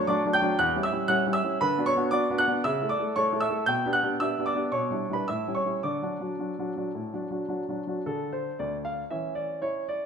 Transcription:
0.07 0.20 F#3 medium
0.07 0.20 A3 medium
0.07 0.21 D4 medium
0.07 0.32 D5 medium
0.07 0.23 D6 medium
0.26 0.38 F#3 soft
0.26 0.38 A3 soft
0.26 0.38 D4 medium
0.33 0.58 G5 medium
0.33 0.59 G6 medium
0.42 0.54 F#3 medium
0.42 0.54 A3 soft
0.42 0.55 D4 medium
0.59 0.75 E2 medium
0.59 0.83 F#5 medium
0.59 0.74 F#6 medium
0.75 0.88 G3 soft
0.75 0.88 C#4 soft
0.75 0.88 E4 soft
0.83 1.09 E5 medium
0.83 1.09 E6 medium
0.92 1.05 G3 soft
0.92 1.04 C#4 soft
0.92 1.05 E4 soft
1.08 1.21 G3 soft
1.08 1.22 C#4 soft
1.08 1.22 E4 medium
1.08 1.33 F#5 medium
1.08 1.32 F#6 medium
1.26 1.39 G3 soft
1.26 1.39 C#4 soft
1.26 1.39 E4 soft
1.33 1.59 E5 medium
1.33 1.49 E6 medium
1.44 1.56 G3 soft
1.44 1.57 C#4 soft
1.44 1.57 E4 soft
1.61 1.78 D3 medium
1.61 1.86 B4 medium
1.61 1.87 B5 medium
1.78 1.91 B3 soft
1.78 1.91 D4 soft
1.78 1.91 F#4 medium
1.86 2.11 C#5 medium
1.86 2.02 C#6 medium
1.96 2.08 B3 soft
1.96 2.09 D4 soft
1.96 2.09 F#4 medium
2.11 2.25 B3 soft
2.11 2.25 D4 soft
2.11 2.25 F#4 medium
2.11 2.37 D5 medium
2.11 2.27 D6 medium
2.30 2.43 B3 medium
2.30 2.42 D4 soft
2.30 2.43 F#4 medium
2.38 2.64 F#5 medium
2.38 2.64 F#6 loud
2.48 2.60 B3 soft
2.48 2.60 D4 soft
2.48 2.60 F#4 soft
2.64 2.81 C#3 medium
2.64 2.89 E5 medium
2.64 2.88 E6 medium
2.81 2.94 A3 soft
2.81 2.94 E4 soft
2.81 2.94 A4 soft
2.89 3.14 D5 medium
2.89 3.05 D6 medium
2.99 3.11 A3 soft
2.99 3.12 E4 soft
2.99 3.12 A4 soft
3.16 3.29 A3 soft
3.16 3.29 E4 soft
3.16 3.29 A4 soft
3.16 3.40 C#5 medium
3.16 3.42 C#6 medium
3.32 3.45 A3 soft
3.32 3.45 E4 soft
3.32 3.46 A4 soft
3.40 3.66 E5 medium
3.40 3.67 E6 medium
3.49 3.62 A3 soft
3.49 3.63 E4 soft
3.49 3.63 A4 soft
3.66 3.84 B2 medium
3.66 3.92 G5 medium
3.66 3.90 G6 medium
3.86 3.98 B3 soft
3.86 3.98 D4 soft
3.86 3.98 G4 soft
3.93 4.18 F#5 medium
3.93 4.19 F#6 medium
4.03 4.15 B3 soft
4.03 4.15 D4 soft
4.03 4.15 G4 soft
4.20 4.33 B3 soft
4.20 4.33 D4 soft
4.20 4.33 G4 soft
4.20 4.45 E5 medium
4.20 4.44 E6 medium
4.39 4.51 B3 soft
4.39 4.51 D4 soft
4.39 4.51 G4 soft
4.46 4.71 D5 medium
4.46 4.72 D6 medium
4.55 4.68 B3 soft
4.55 4.68 D4 soft
4.55 4.68 G4 soft
4.72 4.90 B2 soft
4.72 5.10 C#5 medium
4.72 5.09 C#6 medium
4.91 5.04 G3 soft
4.91 5.04 D4 soft
4.91 5.04 E4 soft
5.10 5.23 G3 soft
5.10 5.23 D4 soft
5.10 5.23 E4 soft
5.10 5.27 B5 medium
5.15 5.27 B4 soft
5.28 5.46 A2 soft
5.28 5.54 E5 medium
5.28 5.53 E6 medium
5.48 5.61 G3 soft
5.48 5.60 C#4 soft
5.48 5.61 E4 soft
5.55 5.82 C#5 medium
5.55 5.72 C#6 medium
5.65 5.78 G3 soft
5.65 5.79 C#4 soft
5.65 5.79 E4 soft
5.83 6.02 D3 soft
5.83 7.75 D5 soft
5.83 7.78 D6 medium
6.02 6.16 F#3 soft
6.02 6.16 D4 soft
6.02 6.16 F#4 soft
6.20 6.34 F#3 soft
6.20 6.34 D4 soft
6.20 6.34 F#4 soft
6.39 6.53 F#3 soft
6.39 6.53 D4 soft
6.39 6.53 F#4 soft
6.59 6.72 F#3 soft
6.59 6.72 D4 soft
6.59 6.72 F#4 soft
6.76 6.90 F#3 soft
6.76 6.91 D4 soft
6.76 6.91 F#4 soft
6.95 7.13 A2 soft
7.13 7.27 F#3 soft
7.13 7.27 D4 soft
7.13 7.27 F#4 soft
7.31 7.44 F#3 soft
7.31 7.44 D4 soft
7.31 7.45 F#4 soft
7.49 7.62 F#3 soft
7.49 7.62 D4 soft
7.49 7.63 F#4 soft
7.69 7.82 F#3 soft
7.69 7.83 D4 soft
7.69 7.83 F#4 soft
7.87 8.00 F#3 soft
7.87 8.01 D4 soft
7.87 8.02 F#4 soft
8.06 8.49 D3 soft
8.06 9.08 D4 soft
8.06 8.33 A4 medium
8.33 8.57 C5 medium
8.59 9.01 D2 soft
8.59 8.75 D5 medium
8.85 9.01 F5 medium
9.10 9.53 E3 soft
9.10 10.06 C#4 soft
9.10 9.34 E5 medium
9.35 9.62 D5 medium
9.62 10.05 E4 soft
9.62 9.86 C#5 medium
9.88 10.06 D5 medium

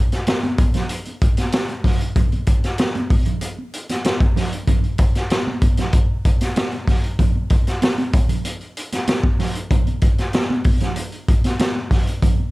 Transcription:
0.12 snare soft
0.12 closed hi-hat soft
0.27 snare loud
0.27 closed hi-hat medium
0.27 muted conga soft
0.27 high conga medium
0.43 closed hi-hat soft
0.43 muted conga soft
0.43 high conga medium
0.58 kick loud
0.58 closed hi-hat medium
0.74 snare soft
0.74 closed hi-hat medium
0.74 low conga medium
0.89 closed hi-hat medium
1.05 closed hi-hat soft
1.05 muted conga soft
1.21 kick loud
1.21 closed hi-hat medium
1.37 snare soft
1.37 closed hi-hat medium
1.37 high conga medium
1.52 snare loud
1.52 closed hi-hat loud
1.52 high conga medium
1.68 closed hi-hat soft
1.68 muted conga soft
1.84 kick medium
1.84 snare soft
1.84 open hi-hat medium
1.84 low conga medium
2.01 closed hi-hat medium
2.16 kick loud
2.16 closed hi-hat medium
2.16 muted conga soft
2.16 low conga medium
2.32 closed hi-hat soft
2.32 muted conga soft
2.47 kick medium
2.47 closed hi-hat medium
2.64 snare soft
2.64 closed hi-hat soft
2.78 snare loud
2.78 closed hi-hat loud
2.78 muted conga soft
2.78 high conga medium
2.95 closed hi-hat soft
2.95 high conga medium
3.10 kick loud
3.10 open hi-hat medium
3.26 closed hi-hat medium
3.26 low conga medium
3.41 closed hi-hat medium
3.41 muted conga soft
3.58 muted conga soft
3.73 closed hi-hat medium
3.89 snare soft
3.89 closed hi-hat medium
3.89 high conga medium
4.04 snare loud
4.04 closed hi-hat loud
4.04 high conga medium
4.20 kick loud
4.20 closed hi-hat soft
4.20 muted conga soft
4.36 snare soft
4.36 open hi-hat medium
4.36 low conga medium
4.52 closed hi-hat medium
4.67 kick loud
4.67 closed hi-hat medium
4.67 muted conga soft
4.67 low conga loud
4.84 closed hi-hat soft
4.98 kick loud
4.98 closed hi-hat medium
5.15 snare soft
5.15 closed hi-hat soft
5.30 snare loud
5.30 closed hi-hat loud
5.30 muted conga soft
5.30 high conga medium
5.47 muted conga soft
5.47 high conga medium
5.62 kick loud
5.62 closed hi-hat medium
5.77 snare soft
5.77 closed hi-hat medium
5.77 low conga medium
5.93 kick loud
5.93 closed hi-hat medium
6.25 kick medium
6.25 closed hi-hat medium
6.41 snare soft
6.41 closed hi-hat medium
6.41 high conga soft
6.56 snare loud
6.56 closed hi-hat medium
6.56 muted conga soft
6.56 high conga medium
6.72 closed hi-hat soft
6.88 kick medium
6.88 snare soft
6.88 open hi-hat medium
6.88 low conga medium
7.04 closed hi-hat medium
7.19 kick loud
7.19 closed hi-hat medium
7.19 muted conga soft
7.19 low conga medium
7.36 muted conga soft
7.50 kick loud
7.50 closed hi-hat medium
7.67 snare soft
7.67 closed hi-hat medium
7.82 snare loud
7.82 closed hi-hat loud
7.82 muted conga soft
7.82 high conga medium
7.98 closed hi-hat soft
7.98 muted conga soft
7.98 high conga medium
8.13 kick loud
8.13 closed hi-hat medium
8.29 closed hi-hat medium
8.29 low conga medium
8.45 closed hi-hat medium
8.45 muted conga soft
8.61 closed hi-hat soft
8.77 closed hi-hat medium
8.92 snare soft
8.92 closed hi-hat medium
8.92 high conga medium
9.07 snare loud
9.07 closed hi-hat loud
9.07 muted conga soft
9.07 high conga medium
9.24 kick loud
9.24 muted conga soft
9.39 snare soft
9.39 open hi-hat medium
9.39 low conga medium
9.55 closed hi-hat medium
9.71 kick loud
9.71 closed hi-hat medium
9.71 muted conga soft
9.71 low conga medium
9.87 closed hi-hat soft
9.87 muted conga soft
10.01 kick loud
10.01 closed hi-hat medium
10.18 snare soft
10.18 closed hi-hat soft
10.33 snare loud
10.33 closed hi-hat medium
10.33 high conga medium
10.50 muted conga soft
10.50 high conga medium
10.64 kick loud
10.64 open hi-hat medium
10.80 snare soft
10.80 closed hi-hat medium
10.80 low conga medium
10.96 closed hi-hat medium
10.96 muted conga soft
11.12 closed hi-hat soft
11.28 kick loud
11.28 closed hi-hat medium
11.44 snare soft
11.44 closed hi-hat medium
11.44 high conga medium
11.59 snare loud
11.59 closed hi-hat loud
11.59 muted conga soft
11.59 high conga medium
11.75 muted conga soft
11.91 kick medium
11.91 snare soft
11.91 open hi-hat medium
11.91 low conga medium
12.07 closed hi-hat medium
12.22 kick loud
12.22 closed hi-hat medium
12.22 muted conga soft
12.22 low conga medium
12.39 muted conga soft

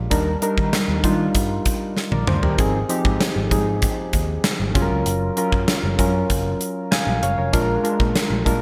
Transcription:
0.00 0.13 G#3 medium
0.00 0.11 D4 medium
0.00 0.13 F4 medium
0.00 0.13 G4 medium
0.10 0.34 D#2 loud
0.10 0.30 G3 medium
0.10 0.30 D4 medium
0.10 0.30 D#4 medium
0.10 0.30 A#4 medium
0.10 kick loud
0.10 closed hi-hat medium
0.42 0.80 G3 medium
0.42 0.80 D4 medium
0.42 0.80 D#4 medium
0.42 0.81 A#4 medium
0.42 closed hi-hat medium
0.57 0.69 D#3 medium
0.57 kick medium
0.73 snare medium
0.73 closed hi-hat medium
0.88 1.00 D#2 medium
1.03 1.27 D#3 medium
1.03 1.80 G3 medium
1.03 1.80 D4 medium
1.03 1.80 D#4 medium
1.03 1.80 F4 medium
1.03 kick medium
1.03 closed hi-hat medium
1.35 1.58 G2 medium
1.35 kick medium
1.35 closed hi-hat medium
1.65 kick medium
1.65 closed hi-hat medium
1.97 snare soft
2.12 2.24 A#1 medium
2.12 2.27 A#4 soft
2.12 2.27 D5 medium
2.12 high tom medium
2.27 2.39 D2 medium
2.27 2.42 C5 medium
2.27 mid tom medium
2.42 2.55 D#2 medium
2.42 2.73 G4 soft
2.42 2.72 A#4 medium
2.42 floor tom medium
2.58 2.82 G#1 medium
2.58 2.78 F3 medium
2.58 2.78 C4 medium
2.58 2.78 D#4 medium
2.58 2.78 G#4 medium
2.58 kick loud
2.58 closed hi-hat medium
2.89 3.27 F3 medium
2.89 3.28 C4 medium
2.89 3.28 D#4 medium
2.89 3.28 G4 medium
2.89 closed hi-hat medium
3.05 3.16 G#2 medium
3.05 kick medium
3.21 snare medium
3.21 closed hi-hat medium
3.36 3.48 G#1 medium
3.51 3.86 G#2 medium
3.51 4.27 F3 medium
3.51 4.27 C4 medium
3.51 4.28 D#4 medium
3.51 4.28 G#4 medium
3.51 kick medium
3.51 closed hi-hat medium
3.82 kick medium
3.82 closed hi-hat medium
4.13 4.36 D#2 medium
4.13 kick medium
4.13 closed hi-hat medium
4.44 snare loud
4.44 closed hi-hat medium
4.60 4.71 G#1 medium
4.74 4.87 F#1 medium
4.74 5.24 F#3 medium
4.74 5.24 C#4 medium
4.74 5.25 F4 medium
4.74 4.82 G#4 medium
4.74 kick loud
4.74 closed hi-hat medium
4.82 5.28 A#4 medium
4.91 5.02 C#2 medium
5.06 5.29 F#1 medium
5.06 closed hi-hat medium
5.37 5.75 F#3 medium
5.37 5.75 C#4 medium
5.37 5.75 F4 medium
5.37 5.75 A#4 medium
5.37 closed hi-hat medium
5.52 5.64 F#2 medium
5.52 kick medium
5.68 snare loud
5.68 closed hi-hat medium
5.83 5.95 F#1 medium
5.98 6.22 F#2 medium
5.98 6.75 F#3 medium
5.98 6.75 C#4 medium
5.98 6.75 F4 medium
5.98 6.75 A#4 medium
5.98 kick medium
5.98 closed hi-hat medium
6.30 6.53 F#1 medium
6.30 kick medium
6.30 closed hi-hat medium
6.61 closed hi-hat medium
6.91 7.21 F5 medium
6.91 7.21 G#5 medium
6.91 snare loud
6.91 closed hi-hat medium
7.07 7.19 A#1 medium
7.22 7.34 F#1 medium
7.22 7.37 C#5 medium
7.22 7.37 F5 medium
7.22 closed hi-hat medium
7.38 7.50 F1 medium
7.38 7.53 A#4 soft
7.38 7.67 C#5 medium
7.52 7.77 A#1 medium
7.52 7.72 G#3 medium
7.52 7.72 D4 medium
7.52 7.72 F4 medium
7.52 7.73 A#4 medium
7.52 kick loud
7.52 closed hi-hat medium
7.83 8.22 G#3 medium
7.83 8.22 D4 medium
7.83 8.22 F4 medium
7.83 8.23 A#4 medium
7.83 closed hi-hat medium
8.00 8.12 A#2 medium
8.00 kick medium
8.16 snare medium
8.16 closed hi-hat medium
8.30 8.42 A#1 medium
8.45 8.62 A#2 medium
8.45 8.62 G#3 medium
8.45 8.62 D4 medium
8.45 8.62 F4 medium
8.45 8.62 A#4 medium
8.45 kick medium
8.45 closed hi-hat medium

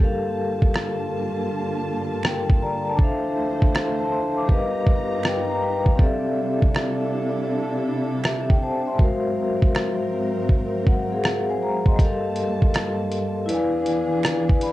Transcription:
0.00 2.96 G2 medium
0.00 4.45 D3 medium
0.00 2.94 G3 medium
0.00 2.96 A#3 medium
0.00 2.96 F4 medium
0.00 2.95 G4 medium
0.00 2.21 A4 medium
0.00 2.22 A#4 medium
0.00 2.96 A5 medium
0.04 2.23 F5 medium
0.62 kick medium
0.74 finger snap medium
0.74 cross-stick medium
2.23 2.60 A#4 medium
2.23 2.60 G5 medium
2.23 finger snap medium
2.23 cross-stick loud
2.50 kick medium
2.62 2.86 D5 medium
2.62 2.85 A#5 medium
2.87 3.23 A5 medium
2.96 4.48 D2 medium
2.96 4.48 E3 medium
2.96 4.48 F3 medium
2.96 4.45 D4 medium
2.96 3.72 A4 medium
2.96 4.48 C5 medium
2.96 3.73 C5 medium
2.96 kick loud
3.02 3.74 E5 medium
3.02 3.74 F5 medium
3.62 kick medium
3.75 3.98 A4 medium
3.75 3.98 F5 medium
3.75 finger snap medium
3.75 cross-stick loud
4.00 4.12 C5 medium
4.00 4.12 A5 medium
4.12 4.35 C6 medium
4.37 4.53 F5 medium
4.37 4.72 D6 medium
4.45 5.94 G3 medium
4.45 8.95 G3 medium
4.45 5.98 B3 medium
4.45 5.98 F4 medium
4.45 5.95 G4 medium
4.45 5.22 A#4 medium
4.45 kick medium
4.50 5.98 G2 medium
4.50 5.98 D#4 medium
4.50 5.23 B4 medium
4.50 5.24 D#5 medium
4.50 5.98 A#5 medium
4.54 5.25 F5 medium
4.87 kick medium
5.23 5.48 B4 soft
5.23 5.48 G5 medium
5.23 finger snap medium
5.23 cross-stick loud
5.49 5.61 A#5 medium
5.63 5.86 B4 medium
5.63 5.86 G5 medium
5.86 6.23 F5 medium
5.86 kick medium
5.95 8.93 C4 medium
5.95 8.19 G4 medium
5.95 8.20 A4 medium
5.95 kick loud
6.00 8.96 C3 medium
6.00 8.97 D4 medium
6.00 8.97 E4 medium
6.00 8.97 A4 medium
6.00 8.21 D5 medium
6.00 8.22 E5 medium
6.62 kick medium
6.75 finger snap medium
6.75 cross-stick loud
8.24 8.49 G4 medium
8.24 8.49 E5 medium
8.24 finger snap medium
8.24 cross-stick loud
8.50 8.62 G5 medium
8.50 kick medium
8.62 8.86 C5 medium
8.62 8.86 A5 medium
8.87 9.23 E5 medium
8.87 9.22 C6 medium
8.96 11.96 G#2 medium
8.96 11.94 G#3 medium
8.96 11.96 C4 medium
8.96 11.95 F#4 medium
8.96 kick loud
9.00 11.97 F#3 medium
9.00 11.97 A#4 medium
9.00 10.83 A#4 medium
9.00 10.84 C5 medium
9.04 10.85 F5 medium
9.62 kick medium
9.75 finger snap medium
9.75 cross-stick medium
10.49 kick medium
10.87 11.11 A#4 medium
10.87 11.11 F#5 medium
10.87 kick medium
11.12 11.48 G#4 medium
11.12 11.47 F5 medium
11.24 finger snap medium
11.24 cross-stick loud
11.50 11.62 C5 medium
11.50 11.62 G#5 medium
11.63 11.86 A#5 medium
11.86 12.23 D#5 medium
11.86 12.23 C6 medium
11.86 kick medium
11.96 13.48 G2 medium
11.96 13.45 G3 medium
11.96 13.47 G3 medium
11.96 13.48 A#3 medium
11.96 13.46 G4 medium
11.96 13.48 A5 medium
11.96 kick loud
11.96 closed hi-hat medium
12.00 13.47 A4 medium
12.00 13.48 A#4 medium
12.00 13.49 F5 medium
12.36 closed hi-hat medium
12.62 kick medium
12.74 finger snap medium
12.74 cross-stick loud
12.74 closed hi-hat medium
13.12 closed hi-hat medium
13.46 14.72 E2 medium
13.46 14.72 E3 medium
13.46 14.72 D4 medium
13.46 14.72 E4 medium
13.46 14.72 G#4 medium
13.46 13.85 B4 medium
13.46 closed hi-hat medium
13.50 13.86 D5 medium
13.50 13.87 F5 medium
13.50 13.88 G#5 medium
13.86 closed hi-hat medium
14.23 finger snap medium
14.23 cross-stick loud
14.23 closed hi-hat medium
14.49 14.62 B4 medium
14.49 14.62 G#5 medium
14.49 kick medium
14.61 14.72 D5 medium
14.61 14.72 B5 medium
14.61 closed hi-hat medium

